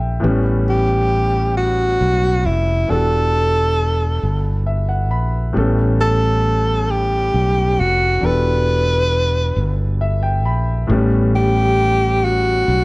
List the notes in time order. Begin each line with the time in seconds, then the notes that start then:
Already playing: A#1 E3 B3 D4 G4 A4 E5 F#5 G5
0.20 A2 E3 B3 C#4
0.24 A1 G3
0.69 G4
1.57 F#4
2.01 B1
2.45 F1 E4
2.87 E1 E3 B3 D4 F#4 A4
2.91 G4 A4
4.23 G1
4.66 E5
4.89 F#5
5.11 A#1 B5
5.53 A1 A2 G3 B3 C#4
5.58 A4
6.01 A4
6.91 G4
7.34 B1
7.79 F1 F#4
8.20 E1 E3 B3 D4 F#4
8.24 G4 A4 B4
9.56 G1
10.01 E5
10.23 G5
10.45 A#1 B5
10.87 A1 A2 A3 B3 C#4
10.92 G3
11.35 G4
12.24 F#4
12.68 B1